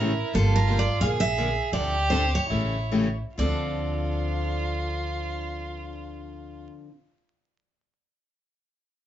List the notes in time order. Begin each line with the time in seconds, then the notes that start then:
Already playing: A1 E4 A#4
0.00 C#3 E3 A3 C#4 G4
0.33 G1 D3 F3 A#3 D4 F4 G4 A4
0.56 A#4
0.67 D3 F3 A#3 D4 G4
0.79 D5
1.00 A#1 D3 F3 A#3 G#4 F5
1.05 D4
1.20 E5
1.37 D3 F3 A#3 D4 G#4
1.72 D2 D3 F3 C4 D4 G4 A4 D5
2.10 D3 F3 C4 D4 A4 C5
2.35 C#5
2.50 A1 C#3 E3 A3 C#4 E4 G4
2.91 C#3 E3 A3 C#4 G4
3.37 D2 D3 F3 C4 D4 F4 D5
3.41 A4